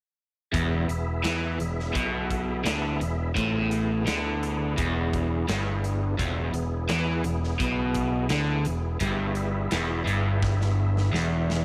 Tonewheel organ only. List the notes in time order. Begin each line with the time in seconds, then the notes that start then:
0.51 B3 E4 G#4 E5
3.34 C4 F4 A4
3.58 B3 E4 G#4
6.17 C4 F4 A4
6.42 B3 E4 G#4
9.01 B3 E4 G#4 E5